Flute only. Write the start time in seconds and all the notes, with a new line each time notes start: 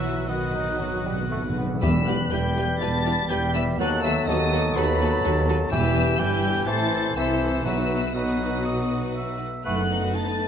Already playing: F#6
0.30 F#6
1.83 E5
2.06 F#5
2.31 G5
2.81 A5
3.29 G5
3.55 E5
3.79 F#5
4.04 E5
4.27 D#5
4.76 B4
5.72 E5
6.19 G5
6.67 A5
7.17 E5
7.65 E5
8.16 D#5
9.65 F#5
10.15 A5